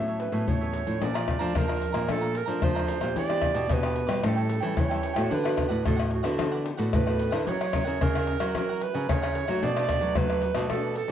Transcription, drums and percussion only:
0.07 pandeiro, maracas
0.20 pandeiro
0.32 pandeiro, maracas
0.48 pandeiro, maracas, surdo
0.62 pandeiro, maracas
0.73 pandeiro, maracas
0.87 pandeiro, maracas
1.01 pandeiro, maracas, surdo
1.15 pandeiro, tamborim, maracas
1.28 pandeiro, tamborim, surdo
1.40 pandeiro, maracas
1.55 pandeiro, tamborim, maracas, surdo
1.69 pandeiro, tamborim, maracas
1.82 pandeiro, maracas
1.94 pandeiro, tamborim, maracas
2.09 pandeiro, tamborim, maracas, surdo
2.23 pandeiro, maracas
2.35 pandeiro, maracas
2.48 pandeiro, maracas
2.62 pandeiro, tamborim, maracas, surdo
2.76 pandeiro, tamborim, maracas
2.89 pandeiro, maracas
3.01 pandeiro, tamborim, maracas
3.16 pandeiro, maracas, surdo
3.30 pandeiro, tamborim, maracas
3.42 pandeiro, tamborim, surdo
3.55 pandeiro, maracas
3.70 pandeiro, tamborim, maracas, surdo
3.83 pandeiro, tamborim, maracas
3.96 pandeiro, maracas
4.09 pandeiro, tamborim, maracas
4.24 pandeiro, tamborim, maracas, surdo
4.38 pandeiro, maracas
4.50 pandeiro, maracas
4.62 pandeiro, maracas
4.77 pandeiro, tamborim, maracas, surdo
4.91 pandeiro, tamborim, maracas
5.03 pandeiro, maracas
5.16 pandeiro, tamborim, maracas
5.32 pandeiro, maracas, surdo
5.45 pandeiro, tamborim, maracas
5.58 pandeiro, tamborim, maracas, surdo
5.70 pandeiro, maracas
5.86 pandeiro, tamborim, maracas, surdo
6.00 pandeiro, tamborim, maracas
6.11 pandeiro
6.24 pandeiro, tamborim, maracas
6.39 pandeiro, tamborim, maracas, surdo
6.53 pandeiro, maracas
6.66 pandeiro, maracas
6.78 pandeiro, maracas
6.93 pandeiro, tamborim, maracas, surdo
7.07 pandeiro, tamborim, maracas
7.19 pandeiro, maracas
7.32 pandeiro, tamborim, maracas
7.47 pandeiro, maracas, surdo
7.61 pandeiro, tamborim, maracas
7.73 pandeiro, tamborim, maracas, surdo
7.86 pandeiro, maracas
8.01 pandeiro, tamborim, maracas, surdo
8.15 pandeiro, tamborim, maracas
8.27 pandeiro, maracas
8.40 pandeiro, tamborim, maracas
8.55 pandeiro, tamborim, maracas, surdo
8.69 pandeiro, maracas
8.81 pandeiro, maracas
8.95 pandeiro, maracas
9.09 pandeiro, tamborim, maracas, surdo
9.23 pandeiro, tamborim, maracas
9.35 pandeiro
9.48 pandeiro, tamborim, maracas
9.63 pandeiro, maracas, surdo
9.77 pandeiro, tamborim, maracas
9.89 pandeiro, tamborim, maracas, surdo
10.01 pandeiro, maracas
10.15 pandeiro, tamborim, maracas, surdo
10.30 pandeiro, tamborim, maracas
10.42 pandeiro, maracas
10.55 pandeiro, tamborim, maracas
10.70 pandeiro, tamborim, maracas, surdo
10.84 pandeiro, maracas
10.96 pandeiro, maracas
11.08 pandeiro, maracas

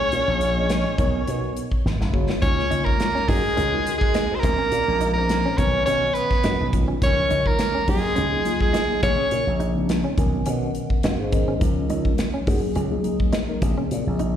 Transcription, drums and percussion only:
0.12 closed hi-hat
0.41 closed hi-hat
0.69 snare, closed hi-hat
0.98 kick, closed hi-hat
1.27 closed hi-hat
1.57 closed hi-hat
1.72 kick
1.86 snare
2.01 snare
2.14 kick
2.30 snare
2.42 kick, closed hi-hat
2.59 snare
2.71 closed hi-hat
2.86 kick
3.00 snare, closed hi-hat
3.16 snare
3.28 kick, open hi-hat
3.57 closed hi-hat
3.86 closed hi-hat
4.01 kick
4.14 snare, closed hi-hat
4.43 kick, closed hi-hat
4.72 closed hi-hat
5.01 closed hi-hat
5.29 snare, closed hi-hat
5.58 kick, closed hi-hat
5.86 closed hi-hat
6.15 closed hi-hat
6.31 kick, snare
6.43 snare, closed hi-hat
6.73 kick, closed hi-hat
7.02 kick, closed hi-hat
7.30 closed hi-hat
7.46 kick
7.59 snare, closed hi-hat
7.88 kick, open hi-hat
8.16 closed hi-hat
8.45 closed hi-hat
8.60 kick
8.74 snare, closed hi-hat
9.03 kick, closed hi-hat
9.31 closed hi-hat
9.60 closed hi-hat
9.89 snare, closed hi-hat
10.18 kick, closed hi-hat
10.46 closed hi-hat
10.75 closed hi-hat
10.90 kick
11.03 snare, closed hi-hat
11.32 kick, closed hi-hat
11.61 kick, closed hi-hat
11.90 closed hi-hat
12.05 kick
12.18 snare, closed hi-hat
12.47 kick, open hi-hat
12.75 closed hi-hat
13.04 closed hi-hat
13.20 kick
13.33 snare, closed hi-hat
13.62 kick, closed hi-hat
13.91 closed hi-hat
14.19 closed hi-hat

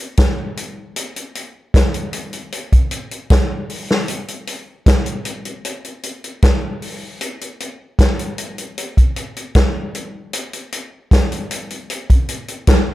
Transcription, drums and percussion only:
0.17 kick, snare, closed hi-hat
0.57 closed hi-hat
0.96 closed hi-hat
1.16 closed hi-hat
1.35 closed hi-hat
1.74 kick, snare, closed hi-hat
1.94 closed hi-hat
2.13 closed hi-hat
2.33 closed hi-hat
2.52 closed hi-hat
2.72 kick, closed hi-hat
2.91 closed hi-hat
3.11 closed hi-hat
3.30 kick, snare, closed hi-hat
3.70 open hi-hat
3.91 snare
4.08 closed hi-hat
4.28 closed hi-hat
4.47 closed hi-hat
4.86 kick, snare, closed hi-hat
5.06 closed hi-hat
5.25 closed hi-hat
5.45 closed hi-hat
5.65 closed hi-hat
5.85 closed hi-hat
6.03 closed hi-hat
6.24 closed hi-hat
6.42 kick, snare, closed hi-hat
6.82 open hi-hat
7.21 closed hi-hat
7.41 closed hi-hat
7.60 closed hi-hat
7.99 kick, snare, closed hi-hat
8.19 closed hi-hat
8.38 closed hi-hat
8.58 closed hi-hat
8.78 closed hi-hat
8.97 kick, closed hi-hat
9.16 closed hi-hat
9.36 closed hi-hat
9.55 kick, snare, closed hi-hat
9.95 closed hi-hat
10.33 closed hi-hat
10.53 closed hi-hat
10.72 closed hi-hat
11.11 kick, snare, closed hi-hat
11.32 closed hi-hat
11.51 closed hi-hat
11.71 closed hi-hat
11.90 closed hi-hat
12.10 kick, closed hi-hat
12.29 closed hi-hat
12.48 closed hi-hat
12.67 kick, snare, closed hi-hat

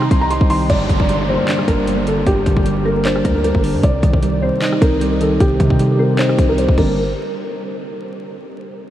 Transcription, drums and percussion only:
0.02 cross-stick
0.11 kick, closed hi-hat
0.31 closed hi-hat
0.41 kick
0.50 open hi-hat
0.70 kick, closed hi-hat, crash
0.89 kick, closed hi-hat
1.00 kick
1.09 closed hi-hat
1.48 clap, closed hi-hat
1.59 cross-stick
1.68 kick, closed hi-hat
1.87 closed hi-hat
2.07 closed hi-hat
2.27 kick, closed hi-hat
2.46 kick, closed hi-hat
2.57 kick
2.66 closed hi-hat
3.05 clap, closed hi-hat
3.16 cross-stick
3.25 kick, closed hi-hat
3.44 closed hi-hat
3.55 kick
3.64 open hi-hat
3.83 kick, closed hi-hat
4.03 kick, closed hi-hat
4.14 kick
4.23 closed hi-hat
4.62 clap, closed hi-hat
4.72 cross-stick
4.82 kick, closed hi-hat
5.01 closed hi-hat
5.21 closed hi-hat
5.40 kick, closed hi-hat
5.60 kick, closed hi-hat
5.70 kick
5.79 closed hi-hat
6.19 clap, closed hi-hat
6.29 cross-stick
6.38 kick, closed hi-hat
6.58 closed hi-hat
6.68 kick
6.78 kick, crash

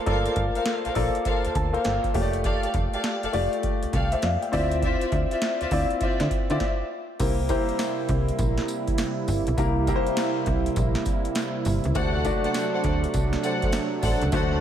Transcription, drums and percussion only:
0.06 kick, closed hi-hat
0.26 closed hi-hat
0.36 kick, closed hi-hat
0.55 closed hi-hat
0.66 snare, closed hi-hat
0.85 closed hi-hat
0.95 kick, open hi-hat
1.15 closed hi-hat
1.25 kick, closed hi-hat
1.45 closed hi-hat
1.55 kick, closed hi-hat
1.74 closed hi-hat
1.84 snare, closed hi-hat
2.04 kick, closed hi-hat
2.14 kick, open hi-hat
2.33 closed hi-hat
2.44 kick, closed hi-hat
2.63 closed hi-hat
2.74 kick, closed hi-hat
2.93 closed hi-hat
3.04 snare, closed hi-hat
3.23 closed hi-hat
3.33 open hi-hat
3.53 closed hi-hat
3.63 kick, closed hi-hat
3.83 closed hi-hat
3.93 kick, closed hi-hat
4.12 closed hi-hat
4.22 snare, closed hi-hat
4.42 closed hi-hat
4.53 kick, open hi-hat
4.71 closed hi-hat
4.82 kick, closed hi-hat
5.01 closed hi-hat
5.12 kick, closed hi-hat
5.31 closed hi-hat
5.42 snare, closed hi-hat
5.61 closed hi-hat
5.71 kick, open hi-hat
5.91 closed hi-hat
6.01 kick, closed hi-hat
6.20 snare, closed hi-hat
6.31 kick, closed hi-hat
6.50 closed hi-hat
6.60 kick, snare
7.20 kick, closed hi-hat, crash, tambourine
7.49 kick, closed hi-hat, tambourine
7.69 closed hi-hat
7.79 snare, closed hi-hat, tambourine
8.09 kick, closed hi-hat
8.29 closed hi-hat
8.39 kick, closed hi-hat, tambourine
8.58 snare
8.68 closed hi-hat, tambourine
8.87 kick, closed hi-hat
8.98 snare, closed hi-hat, tambourine
9.28 kick, open hi-hat, tambourine
9.47 closed hi-hat
9.58 kick, closed hi-hat, tambourine
9.87 kick, closed hi-hat, tambourine
10.07 closed hi-hat
10.17 snare, closed hi-hat, tambourine
10.46 kick, closed hi-hat
10.66 closed hi-hat
10.76 kick, closed hi-hat, tambourine
10.95 snare
11.05 kick, closed hi-hat, tambourine
11.25 closed hi-hat
11.35 snare, closed hi-hat, tambourine
11.65 open hi-hat, tambourine
11.84 closed hi-hat
11.95 kick, closed hi-hat, tambourine
12.25 kick, closed hi-hat, tambourine
12.44 closed hi-hat
12.54 snare, closed hi-hat, tambourine
12.84 kick, closed hi-hat
13.04 closed hi-hat
13.14 kick, closed hi-hat, tambourine
13.33 snare
13.43 closed hi-hat, tambourine
13.62 kick, closed hi-hat
13.72 snare, closed hi-hat, tambourine
14.03 kick, open hi-hat, tambourine
14.21 closed hi-hat
14.32 kick, closed hi-hat, tambourine

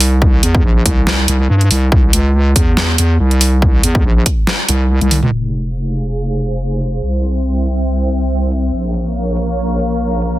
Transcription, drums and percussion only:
0.00 open hi-hat
0.22 kick
0.43 closed hi-hat
0.55 kick
0.86 kick, closed hi-hat
1.07 snare
1.28 closed hi-hat
1.61 closed hi-hat
1.71 open hi-hat
1.92 kick
2.13 closed hi-hat
2.56 kick, closed hi-hat
2.77 snare
2.98 closed hi-hat
3.31 closed hi-hat
3.41 open hi-hat
3.62 kick
3.83 closed hi-hat
3.95 kick
4.26 kick, closed hi-hat
4.47 snare
4.69 closed hi-hat
5.01 closed hi-hat, high tom
5.11 open hi-hat, mid tom
5.23 mid tom
5.54 closed hi-hat
5.96 closed hi-hat
6.39 closed hi-hat
6.81 closed hi-hat
7.24 closed hi-hat
7.66 closed hi-hat
8.09 closed hi-hat
8.52 closed hi-hat
8.94 closed hi-hat
9.37 closed hi-hat
9.79 closed hi-hat
10.22 closed hi-hat

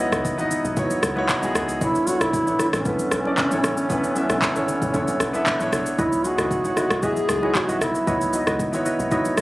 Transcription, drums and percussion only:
0.12 cross-stick, shaker
0.25 kick, shaker
0.38 high conga, shaker
0.51 low conga, shaker
0.65 shaker
0.77 kick, low conga, shaker
0.91 high conga, shaker
1.03 cross-stick, high conga, shaker
1.17 high conga
1.29 kick, clap, shaker
1.43 high conga, shaker
1.55 cross-stick, high conga, low conga, shaker
1.69 shaker
1.81 kick, low conga, shaker
1.95 shaker
2.07 high conga, shaker
2.21 cross-stick, shaker
2.33 kick, shaker
2.47 high conga, shaker
2.59 cross-stick, low conga, shaker
2.73 cross-stick, shaker
2.85 kick, low conga, shaker
2.99 high conga, shaker
3.11 cross-stick, high conga, shaker
3.25 high conga
3.37 kick, clap, shaker
3.51 high conga, shaker
3.64 cross-stick, high conga, low conga, shaker
3.77 shaker
3.90 kick, low conga, shaker
4.04 shaker
4.16 high conga, shaker
4.30 cross-stick, shaker
4.42 kick, clap, shaker
4.56 shaker
4.68 low conga, shaker
4.82 kick, shaker
4.94 kick, low conga, shaker
5.08 high conga, shaker
5.20 cross-stick, high conga, shaker
5.34 high conga, shaker
5.46 kick, clap, shaker
5.60 high conga, shaker
5.72 cross-stick, high conga, low conga, shaker
5.86 shaker
5.99 kick, low conga, shaker
6.12 shaker
6.24 high conga, shaker
6.38 cross-stick, shaker
6.51 kick, shaker
6.64 high conga, shaker
6.77 cross-stick, low conga, shaker
6.90 cross-stick, shaker
7.03 kick, low conga, shaker
7.16 high conga, shaker
7.29 cross-stick, high conga, shaker
7.43 high conga
7.55 kick, clap, shaker
7.69 high conga, shaker
7.81 cross-stick, high conga, low conga, shaker
7.95 shaker
8.07 kick, low conga, shaker
8.21 shaker
8.33 high conga, shaker
8.47 cross-stick, shaker
8.59 kick, shaker
8.73 high conga, shaker
8.86 low conga, shaker
9.00 shaker
9.11 kick, low conga, shaker
9.25 high conga, shaker
9.37 cross-stick, high conga, shaker

